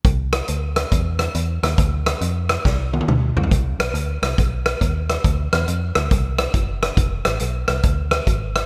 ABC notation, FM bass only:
X:1
M:4/4
L:1/8
Q:"Swing" 1/4=139
K:C
V:1 name="FM bass" clef=bass
C,,2 D,,2 E,,2 E,, _E,, | D,,2 F,,2 C,,2 D,, _D,, | C,, B,,, D,, C,, B,,,2 ^D,,2 | D,, E,, F,, D,, C,,2 ^F,,,2 |
F,,, A,,, B,,, C,, D,,2 _A,,,2 |]